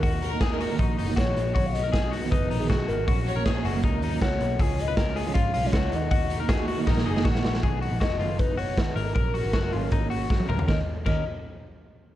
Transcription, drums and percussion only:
0.03 kick loud
0.03 hi-hat pedal medium
0.03 open hi-hat medium
0.22 hi-hat pedal medium
0.22 open hi-hat medium
0.41 kick loud
0.41 snare loud
0.41 hi-hat pedal medium
0.41 open hi-hat medium
0.60 hi-hat pedal medium
0.60 open hi-hat medium
0.79 kick loud
0.79 hi-hat pedal medium
0.79 open hi-hat medium
0.98 hi-hat pedal medium
0.98 open hi-hat medium
1.17 kick loud
1.17 snare loud
1.17 hi-hat pedal medium
1.17 open hi-hat medium
1.36 hi-hat pedal medium
1.36 open hi-hat medium
1.56 kick loud
1.56 hi-hat pedal medium
1.56 open hi-hat medium
1.75 hi-hat pedal medium
1.75 open hi-hat medium
1.93 kick loud
1.93 snare loud
1.93 hi-hat pedal medium
1.93 open hi-hat medium
2.13 hi-hat pedal medium
2.13 open hi-hat medium
2.32 kick loud
2.32 hi-hat pedal medium
2.32 open hi-hat medium
2.51 hi-hat pedal medium
2.51 open hi-hat medium
2.70 kick loud
2.70 snare loud
2.88 hi-hat pedal medium
2.88 open hi-hat medium
3.08 kick loud
3.08 hi-hat pedal medium
3.08 open hi-hat medium
3.26 hi-hat pedal medium
3.26 open hi-hat medium
3.46 kick loud
3.46 snare loud
3.46 hi-hat pedal medium
3.46 open hi-hat medium
3.64 hi-hat pedal medium
3.64 open hi-hat medium
3.83 kick loud
3.83 hi-hat pedal medium
3.83 open hi-hat medium
4.02 hi-hat pedal medium
4.02 open hi-hat medium
4.21 kick loud
4.21 snare loud
4.21 hi-hat pedal medium
4.21 open hi-hat medium
4.40 hi-hat pedal medium
4.40 open hi-hat medium
4.59 kick loud
4.59 hi-hat pedal medium
4.59 open hi-hat medium
4.78 hi-hat pedal medium
4.78 open hi-hat medium
4.97 kick loud
4.97 snare loud
4.97 hi-hat pedal medium
4.97 open hi-hat medium
5.16 hi-hat pedal medium
5.16 open hi-hat medium
5.34 kick loud
5.34 hi-hat pedal medium
5.34 open hi-hat medium
5.54 hi-hat pedal medium
5.54 open hi-hat medium
5.73 kick loud
5.73 snare loud
5.73 hi-hat pedal medium
5.73 open hi-hat medium
5.92 hi-hat pedal medium
5.92 open hi-hat medium
6.11 kick loud
6.11 hi-hat pedal medium
6.11 open hi-hat medium
6.30 hi-hat pedal medium
6.30 open hi-hat medium
6.49 kick loud
6.49 snare loud
6.49 hi-hat pedal medium
6.49 open hi-hat medium
6.68 hi-hat pedal medium
6.68 open hi-hat medium
6.87 kick loud
6.87 snare medium
6.97 snare medium
7.16 snare medium
7.25 kick loud
7.25 snare loud
7.35 snare medium
7.45 snare loud
7.54 snare loud
7.63 kick loud
7.63 closed hi-hat medium
7.82 open hi-hat medium
8.01 kick loud
8.01 snare loud
8.01 closed hi-hat medium
8.21 open hi-hat medium
8.39 kick loud
8.39 closed hi-hat medium
8.58 open hi-hat medium
8.77 kick loud
8.77 snare loud
8.77 closed hi-hat medium
8.97 open hi-hat medium
9.16 kick loud
9.16 closed hi-hat medium
9.35 open hi-hat medium
9.53 kick loud
9.53 snare loud
9.53 closed hi-hat medium
9.73 open hi-hat medium
9.91 kick loud
9.91 closed hi-hat medium
10.11 open hi-hat medium
10.30 kick loud
10.30 snare medium
10.40 high tom medium
10.49 mid tom medium
10.59 floor tom medium
10.68 kick loud
10.68 snare medium
11.06 kick loud
11.06 crash medium

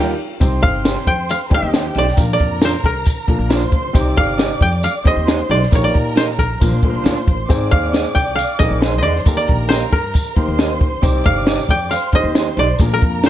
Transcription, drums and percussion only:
0.41 kick loud
0.41 closed hi-hat medium
0.41 tambourine medium
0.62 kick medium
0.62 closed hi-hat medium
0.74 closed hi-hat soft
0.85 snare loud
0.85 closed hi-hat medium
0.85 tambourine loud
0.97 snare soft
1.07 kick medium
1.07 closed hi-hat medium
1.29 closed hi-hat medium
1.29 tambourine medium
1.51 kick medium
1.51 closed hi-hat medium
1.74 snare loud
1.74 closed hi-hat medium
1.74 tambourine medium
1.94 closed hi-hat medium
2.08 snare soft
2.17 kick loud
2.17 closed hi-hat loud
2.17 tambourine medium
2.39 kick medium
2.39 closed hi-hat medium
2.61 snare loud
2.61 closed hi-hat medium
2.61 tambourine medium
2.84 kick medium
2.84 closed hi-hat medium
3.06 kick medium
3.06 closed hi-hat loud
3.06 tambourine medium
3.28 kick medium
3.28 closed hi-hat medium
3.50 snare loud
3.50 closed hi-hat medium
3.50 tambourine medium
3.72 kick medium
3.72 closed hi-hat medium
3.95 kick loud
3.95 closed hi-hat medium
3.95 tambourine medium
4.16 kick medium
4.16 closed hi-hat medium
4.28 closed hi-hat medium
4.39 snare loud
4.39 closed hi-hat medium
4.39 tambourine loud
4.61 kick medium
4.61 closed hi-hat medium
4.72 closed hi-hat medium
4.83 closed hi-hat medium
4.83 tambourine medium
5.05 kick medium
5.05 closed hi-hat medium
5.28 snare loud
5.28 closed hi-hat medium
5.28 tambourine medium
5.50 open hi-hat medium
5.63 snare soft
5.72 kick loud
5.72 closed hi-hat loud
5.72 tambourine medium
5.94 kick medium
5.94 closed hi-hat medium
6.17 snare loud
6.17 closed hi-hat medium
6.17 tambourine medium
6.29 snare soft
6.39 kick medium
6.39 closed hi-hat medium
6.61 kick medium
6.61 closed hi-hat medium
6.61 tambourine medium
6.83 kick medium
6.83 closed hi-hat medium
7.06 snare loud
7.06 closed hi-hat medium
7.06 tambourine medium
7.28 kick loud
7.28 closed hi-hat medium
7.50 kick loud
7.50 closed hi-hat loud
7.50 tambourine medium
7.72 kick medium
7.72 closed hi-hat medium
7.94 snare loud
7.94 closed hi-hat medium
7.94 tambourine medium
8.16 kick medium
8.16 closed hi-hat medium
8.27 closed hi-hat medium
8.38 closed hi-hat loud
8.38 tambourine medium
8.60 kick medium
8.60 closed hi-hat medium
8.82 snare loud
8.82 closed hi-hat medium
8.82 tambourine medium
9.04 closed hi-hat medium
9.16 snare soft
9.26 kick loud
9.26 closed hi-hat loud
9.26 tambourine medium
9.48 kick medium
9.48 closed hi-hat medium
9.70 snare loud
9.70 closed hi-hat medium
9.70 tambourine loud
9.92 kick medium
9.92 closed hi-hat medium
10.14 kick medium
10.14 closed hi-hat medium
10.14 tambourine medium
10.36 kick medium
10.36 closed hi-hat medium
10.59 snare loud
10.59 closed hi-hat medium
10.59 tambourine medium
10.81 kick medium
10.81 closed hi-hat medium
11.03 kick loud
11.03 closed hi-hat loud
11.03 tambourine medium
11.24 kick medium
11.24 closed hi-hat medium
11.47 snare loud
11.47 closed hi-hat medium
11.47 tambourine loud
11.59 snare soft
11.69 kick medium
11.69 closed hi-hat medium
11.91 closed hi-hat medium
11.91 tambourine medium
12.12 kick medium
12.12 closed hi-hat medium
12.35 snare loud
12.35 closed hi-hat medium
12.35 tambourine medium
12.57 closed hi-hat medium
12.79 kick loud
12.79 closed hi-hat loud
12.79 tambourine medium
13.01 kick medium
13.01 closed hi-hat medium
13.23 snare loud
13.23 closed hi-hat medium
13.23 tambourine medium

